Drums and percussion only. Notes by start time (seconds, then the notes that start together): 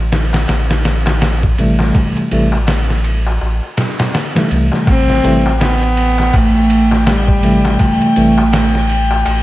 0.12 snare, ride
0.33 snare, ride, darbuka tek
0.48 snare, ride, darbuka tek
0.70 snare, ride, darbuka tek
0.85 snare, ride
1.06 snare, ride, darbuka tek
1.21 snare, ride, darbuka tek
1.43 kick, darbuka tek
1.58 ride
1.79 snare, darbuka tek
1.94 kick, ride, darbuka tek
2.17 ride, darbuka tek
2.31 ride
2.52 darbuka tek
2.67 snare, ride, darbuka tek
2.89 snare, darbuka tek
3.04 ride
3.27 darbuka tek
3.41 darbuka tek
3.63 darbuka tek
3.77 snare, ride
3.99 snare, ride, darbuka tek
4.14 snare, ride, darbuka tek
4.36 snare, ride, darbuka tek
4.51 ride
4.72 snare, darbuka tek
4.87 kick, ride, darbuka tek
5.08 snare, darbuka tek
5.24 snare, ride
5.46 darbuka tek
5.60 snare, ride, darbuka tek
5.81 ride, darbuka tek
5.97 ride
6.18 snare, darbuka tek
6.33 kick, ride, darbuka tek
6.54 darbuka tek
6.70 ride
6.91 snare, darbuka tek
7.07 snare, ride, darbuka tek
7.28 kick, darbuka tek
7.43 ride
7.65 snare, darbuka tek
7.79 kick, ride, darbuka tek
8.02 ride, darbuka tek
8.16 ride
8.38 darbuka tek
8.53 snare, ride, darbuka tek
8.74 snare, darbuka tek
8.89 ride
9.11 darbuka tek
9.25 ride, darbuka tek